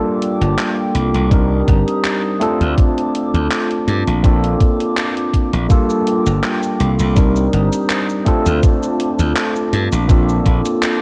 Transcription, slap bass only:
0, 0, Header, 1, 2, 480
1, 0, Start_track
1, 0, Key_signature, -2, "minor"
1, 0, Tempo, 731707
1, 1823, Time_signature, 4, 2, 24, 8
1, 7228, End_track
2, 0, Start_track
2, 0, Title_t, "Slap bass"
2, 0, Program_c, 0, 36
2, 270, Note_on_c, 0, 31, 93
2, 355, Note_off_c, 0, 31, 0
2, 622, Note_on_c, 0, 36, 85
2, 719, Note_off_c, 0, 36, 0
2, 751, Note_on_c, 0, 36, 86
2, 1059, Note_off_c, 0, 36, 0
2, 1102, Note_on_c, 0, 31, 86
2, 1199, Note_off_c, 0, 31, 0
2, 1710, Note_on_c, 0, 38, 97
2, 1795, Note_off_c, 0, 38, 0
2, 2191, Note_on_c, 0, 38, 97
2, 2275, Note_off_c, 0, 38, 0
2, 2542, Note_on_c, 0, 43, 83
2, 2639, Note_off_c, 0, 43, 0
2, 2671, Note_on_c, 0, 34, 82
2, 2979, Note_off_c, 0, 34, 0
2, 3630, Note_on_c, 0, 34, 95
2, 3715, Note_off_c, 0, 34, 0
2, 4109, Note_on_c, 0, 31, 97
2, 4194, Note_off_c, 0, 31, 0
2, 4462, Note_on_c, 0, 36, 85
2, 4559, Note_off_c, 0, 36, 0
2, 4589, Note_on_c, 0, 36, 82
2, 4898, Note_off_c, 0, 36, 0
2, 4940, Note_on_c, 0, 31, 87
2, 5038, Note_off_c, 0, 31, 0
2, 5550, Note_on_c, 0, 38, 98
2, 5635, Note_off_c, 0, 38, 0
2, 6030, Note_on_c, 0, 38, 97
2, 6115, Note_off_c, 0, 38, 0
2, 6382, Note_on_c, 0, 43, 84
2, 6479, Note_off_c, 0, 43, 0
2, 6510, Note_on_c, 0, 34, 85
2, 6818, Note_off_c, 0, 34, 0
2, 6862, Note_on_c, 0, 34, 81
2, 6959, Note_off_c, 0, 34, 0
2, 7228, End_track
0, 0, End_of_file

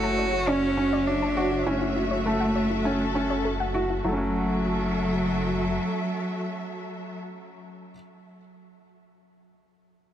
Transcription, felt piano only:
0, 0, Header, 1, 2, 480
1, 0, Start_track
1, 0, Key_signature, 3, "minor"
1, 0, Tempo, 594059
1, 1350, Time_signature, 4, 2, 24, 8
1, 8190, End_track
2, 0, Start_track
2, 0, Title_t, "Felt piano"
2, 0, Program_c, 0, 0
2, 0, Note_on_c, 0, 57, 93
2, 181, Note_off_c, 0, 57, 0
2, 382, Note_on_c, 0, 61, 89
2, 521, Note_off_c, 0, 61, 0
2, 626, Note_on_c, 0, 61, 81
2, 900, Note_off_c, 0, 61, 0
2, 1106, Note_on_c, 0, 66, 83
2, 1243, Note_off_c, 0, 66, 0
2, 1346, Note_on_c, 0, 61, 89
2, 1620, Note_off_c, 0, 61, 0
2, 1829, Note_on_c, 0, 57, 87
2, 2102, Note_off_c, 0, 57, 0
2, 2305, Note_on_c, 0, 61, 86
2, 2443, Note_off_c, 0, 61, 0
2, 2546, Note_on_c, 0, 61, 81
2, 2820, Note_off_c, 0, 61, 0
2, 3025, Note_on_c, 0, 66, 79
2, 3163, Note_off_c, 0, 66, 0
2, 3268, Note_on_c, 0, 54, 74
2, 3299, Note_on_c, 0, 57, 68
2, 3332, Note_on_c, 0, 61, 70
2, 3365, Note_on_c, 0, 66, 73
2, 6369, Note_off_c, 0, 54, 0
2, 6384, Note_off_c, 0, 57, 0
2, 6401, Note_off_c, 0, 61, 0
2, 6417, Note_off_c, 0, 66, 0
2, 8190, End_track
0, 0, End_of_file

